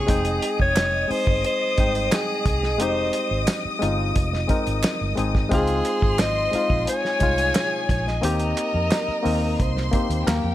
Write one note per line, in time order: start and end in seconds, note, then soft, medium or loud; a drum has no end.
0.00 0.10 C#4 medium
0.00 0.11 E4 medium
0.00 0.10 G4 medium
0.00 0.57 G#4 medium
0.07 0.38 F1 medium
0.07 0.86 G#3 medium
0.07 0.86 C4 medium
0.07 0.87 D#4 medium
0.07 5.48 D#5 medium
0.07 0.87 G5 medium
0.07 5.48 D#6 medium
0.07 kick loud
0.07 closed hi-hat loud
0.25 closed hi-hat medium
0.42 closed hi-hat medium
0.59 1.04 F1 medium
0.59 1.12 C#5 loud
0.59 kick medium
0.76 snare loud
0.76 clap medium
0.76 closed hi-hat loud
1.07 1.61 G#3 medium
1.07 1.62 C4 medium
1.07 1.62 D#4 medium
1.07 1.45 C5 loud
1.07 muted fingered electric bass stroke soft
1.07 open hi-hat medium
1.12 1.63 G#4 medium
1.27 1.42 G1 medium
1.27 kick loud
1.44 2.15 C5 loud
1.44 closed hi-hat medium
1.77 2.08 G#1 medium
1.77 1.84 G3 medium
1.77 2.56 C4 medium
1.77 2.57 D#4 medium
1.77 2.57 G5 medium
1.77 kick medium
1.77 closed hi-hat medium
1.83 2.59 G#3 medium
1.95 closed hi-hat soft
2.12 2.83 G#4 medium
2.12 snare medium
2.12 clap medium
2.12 closed hi-hat medium
2.46 2.80 C2 medium
2.46 kick medium
2.46 closed hi-hat medium
2.63 snare soft
2.78 3.10 F1 medium
2.78 3.57 G#3 medium
2.78 3.58 C4 medium
2.78 3.59 D#4 medium
2.78 3.59 G4 medium
2.78 3.49 C5 loud
2.78 closed hi-hat medium
3.13 closed hi-hat medium
3.31 3.46 G#1 medium
3.47 snare loud
3.47 clap medium
3.47 closed hi-hat loud
3.65 muted fingered electric bass stroke soft
3.79 4.12 G1 loud
3.79 4.33 G#3 medium
3.79 4.33 C4 medium
3.79 4.34 D#4 medium
3.79 4.35 F4 medium
3.79 closed hi-hat medium
4.16 4.45 F1 loud
4.16 kick loud
4.16 closed hi-hat medium
4.33 snare soft
4.47 5.01 G#3 medium
4.47 5.01 C4 medium
4.47 5.02 D#4 medium
4.47 5.02 A#4 medium
4.47 kick medium
4.47 closed hi-hat medium
4.67 4.82 G#1 medium
4.67 closed hi-hat soft
4.83 snare loud
4.83 clap medium
4.83 closed hi-hat medium
5.01 5.16 G1 medium
5.16 5.47 G#1 medium
5.16 5.43 G#3 medium
5.16 5.43 C4 medium
5.16 5.44 D#4 medium
5.16 5.44 G#4 medium
5.16 closed hi-hat medium
5.35 kick loud
5.35 snare soft
5.49 5.81 C#2 medium
5.49 6.29 G#3 loud
5.49 6.29 C4 medium
5.49 6.30 D#4 medium
5.49 6.31 F4 loud
5.49 6.85 C5 medium
5.49 6.85 C6 medium
5.49 kick loud
5.49 closed hi-hat loud
5.53 6.22 G#4 loud
5.67 closed hi-hat soft
5.85 closed hi-hat medium
6.02 6.47 G#1 medium
6.02 kick medium
6.19 6.88 D#5 loud
6.19 snare loud
6.19 clap medium
6.19 closed hi-hat loud
6.52 7.05 G#3 medium
6.52 7.06 C4 medium
6.52 7.06 D#4 medium
6.52 7.07 F4 medium
6.52 muted fingered electric bass stroke soft
6.52 closed hi-hat medium
6.70 6.85 A#1 loud
6.70 kick loud
6.87 8.21 G#4 medium
6.87 7.86 C#5 loud
6.87 8.21 G#5 loud
6.87 closed hi-hat medium
7.05 snare soft
7.19 7.51 C2 medium
7.19 7.99 C3 medium
7.19 7.99 G#3 medium
7.19 8.00 D#4 medium
7.19 8.00 F4 medium
7.19 kick medium
7.19 closed hi-hat medium
7.38 closed hi-hat medium
7.55 snare loud
7.55 clap medium
7.55 closed hi-hat medium
7.89 8.19 A#1 loud
7.89 8.06 C#5 medium
7.89 kick medium
7.89 closed hi-hat medium
8.07 10.07 D#5 medium
8.07 snare soft
8.21 8.53 D#2 loud
8.21 9.01 A#3 medium
8.21 9.01 C4 medium
8.21 9.02 D#4 medium
8.21 9.02 G4 loud
8.21 9.57 A#4 medium
8.21 9.57 A#5 medium
8.21 closed hi-hat medium
8.40 closed hi-hat medium
8.57 clap medium
8.57 closed hi-hat medium
8.74 8.89 F2 medium
8.91 snare loud
8.91 clap medium
8.91 closed hi-hat loud
9.08 muted fingered electric bass stroke soft
9.23 9.55 D#2 medium
9.23 9.76 A#3 medium
9.23 9.77 C4 medium
9.23 9.77 D#4 medium
9.23 9.78 A#4 medium
9.23 open hi-hat medium
9.60 9.89 C2 loud
9.60 10.26 C5 medium
9.60 10.26 C6 medium
9.60 kick medium
9.60 closed hi-hat medium
9.77 snare soft
9.92 10.26 A#3 medium
9.92 10.27 C4 medium
9.92 10.28 D#4 medium
9.92 10.28 G4 medium
9.92 kick medium
9.92 closed hi-hat medium
10.10 10.25 D#2 medium
10.10 closed hi-hat soft
10.26 10.42 D#2 medium
10.26 10.55 A#3 medium
10.26 10.55 G4 medium
10.26 10.55 A#4 medium
10.26 10.55 G5 medium
10.26 snare loud
10.26 clap medium
10.26 closed hi-hat medium
10.44 10.55 F2 medium